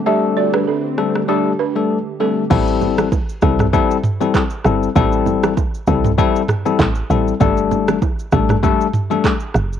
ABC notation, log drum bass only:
X:1
M:4/4
L:1/16
Q:"Swing 16ths" 1/4=98
K:Ador
V:1 name="Log drum bass" clef=bass
z16 | A,,,4- A,,, z C,,3 z4 z G,,,2 | A,,,4- A,,, z C,,3 z3 A,,,2 A,,,2 | G,,,4- G,,, z A,,,3 z4 z F,,,2 |]